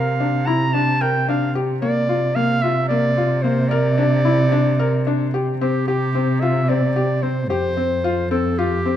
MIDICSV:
0, 0, Header, 1, 4, 480
1, 0, Start_track
1, 0, Tempo, 541516
1, 1611, Time_signature, 7, 3, 24, 8
1, 7947, End_track
2, 0, Start_track
2, 0, Title_t, "Clarinet"
2, 0, Program_c, 0, 71
2, 0, Note_on_c, 0, 77, 81
2, 413, Note_on_c, 0, 82, 88
2, 426, Note_off_c, 0, 77, 0
2, 653, Note_on_c, 0, 81, 91
2, 666, Note_off_c, 0, 82, 0
2, 901, Note_on_c, 0, 79, 81
2, 914, Note_off_c, 0, 81, 0
2, 1137, Note_off_c, 0, 79, 0
2, 1147, Note_on_c, 0, 77, 67
2, 1363, Note_off_c, 0, 77, 0
2, 1613, Note_on_c, 0, 74, 93
2, 2089, Note_on_c, 0, 77, 98
2, 2102, Note_off_c, 0, 74, 0
2, 2326, Note_on_c, 0, 76, 90
2, 2339, Note_off_c, 0, 77, 0
2, 2551, Note_off_c, 0, 76, 0
2, 2557, Note_on_c, 0, 74, 91
2, 3033, Note_on_c, 0, 72, 80
2, 3046, Note_off_c, 0, 74, 0
2, 3269, Note_on_c, 0, 74, 92
2, 3283, Note_off_c, 0, 72, 0
2, 4719, Note_off_c, 0, 74, 0
2, 4965, Note_on_c, 0, 67, 80
2, 5190, Note_off_c, 0, 67, 0
2, 5211, Note_on_c, 0, 67, 83
2, 5680, Note_on_c, 0, 76, 82
2, 5694, Note_off_c, 0, 67, 0
2, 5931, Note_on_c, 0, 74, 84
2, 5944, Note_off_c, 0, 76, 0
2, 6405, Note_on_c, 0, 72, 83
2, 6418, Note_off_c, 0, 74, 0
2, 6639, Note_off_c, 0, 72, 0
2, 6644, Note_on_c, 0, 72, 90
2, 7334, Note_off_c, 0, 72, 0
2, 7366, Note_on_c, 0, 69, 82
2, 7608, Note_on_c, 0, 67, 91
2, 7621, Note_off_c, 0, 69, 0
2, 7947, Note_off_c, 0, 67, 0
2, 7947, End_track
3, 0, Start_track
3, 0, Title_t, "Felt piano"
3, 0, Program_c, 1, 0
3, 0, Note_on_c, 1, 70, 81
3, 111, Note_off_c, 1, 70, 0
3, 179, Note_on_c, 1, 62, 66
3, 351, Note_off_c, 1, 62, 0
3, 418, Note_on_c, 1, 64, 73
3, 591, Note_off_c, 1, 64, 0
3, 659, Note_on_c, 1, 62, 68
3, 831, Note_off_c, 1, 62, 0
3, 895, Note_on_c, 1, 70, 78
3, 1068, Note_off_c, 1, 70, 0
3, 1139, Note_on_c, 1, 62, 71
3, 1311, Note_off_c, 1, 62, 0
3, 1377, Note_on_c, 1, 67, 74
3, 1549, Note_off_c, 1, 67, 0
3, 1614, Note_on_c, 1, 58, 84
3, 1788, Note_off_c, 1, 58, 0
3, 1853, Note_on_c, 1, 65, 70
3, 2027, Note_off_c, 1, 65, 0
3, 2094, Note_on_c, 1, 58, 77
3, 2267, Note_off_c, 1, 58, 0
3, 2338, Note_on_c, 1, 65, 74
3, 2509, Note_off_c, 1, 65, 0
3, 2574, Note_on_c, 1, 58, 80
3, 2747, Note_off_c, 1, 58, 0
3, 2814, Note_on_c, 1, 65, 73
3, 2987, Note_off_c, 1, 65, 0
3, 3050, Note_on_c, 1, 58, 74
3, 3224, Note_off_c, 1, 58, 0
3, 3289, Note_on_c, 1, 70, 87
3, 3463, Note_off_c, 1, 70, 0
3, 3528, Note_on_c, 1, 62, 70
3, 3703, Note_off_c, 1, 62, 0
3, 3765, Note_on_c, 1, 64, 80
3, 3941, Note_off_c, 1, 64, 0
3, 4007, Note_on_c, 1, 62, 76
3, 4182, Note_off_c, 1, 62, 0
3, 4250, Note_on_c, 1, 70, 86
3, 4424, Note_off_c, 1, 70, 0
3, 4492, Note_on_c, 1, 62, 75
3, 4666, Note_off_c, 1, 62, 0
3, 4733, Note_on_c, 1, 67, 73
3, 4906, Note_off_c, 1, 67, 0
3, 4976, Note_on_c, 1, 60, 82
3, 5148, Note_off_c, 1, 60, 0
3, 5211, Note_on_c, 1, 67, 68
3, 5385, Note_off_c, 1, 67, 0
3, 5450, Note_on_c, 1, 60, 72
3, 5624, Note_off_c, 1, 60, 0
3, 5693, Note_on_c, 1, 65, 67
3, 5866, Note_off_c, 1, 65, 0
3, 5932, Note_on_c, 1, 60, 74
3, 6106, Note_off_c, 1, 60, 0
3, 6170, Note_on_c, 1, 67, 72
3, 6345, Note_off_c, 1, 67, 0
3, 6408, Note_on_c, 1, 60, 69
3, 6584, Note_off_c, 1, 60, 0
3, 6648, Note_on_c, 1, 67, 80
3, 6824, Note_off_c, 1, 67, 0
3, 6888, Note_on_c, 1, 60, 68
3, 7064, Note_off_c, 1, 60, 0
3, 7129, Note_on_c, 1, 65, 76
3, 7305, Note_off_c, 1, 65, 0
3, 7366, Note_on_c, 1, 60, 70
3, 7543, Note_off_c, 1, 60, 0
3, 7609, Note_on_c, 1, 65, 78
3, 7786, Note_off_c, 1, 65, 0
3, 7851, Note_on_c, 1, 60, 73
3, 7947, Note_off_c, 1, 60, 0
3, 7947, End_track
4, 0, Start_track
4, 0, Title_t, "Cello"
4, 0, Program_c, 2, 42
4, 0, Note_on_c, 2, 48, 76
4, 1617, Note_off_c, 2, 48, 0
4, 1617, Note_on_c, 2, 48, 83
4, 4936, Note_off_c, 2, 48, 0
4, 4966, Note_on_c, 2, 48, 77
4, 6648, Note_on_c, 2, 41, 77
4, 6661, Note_off_c, 2, 48, 0
4, 7947, Note_off_c, 2, 41, 0
4, 7947, End_track
0, 0, End_of_file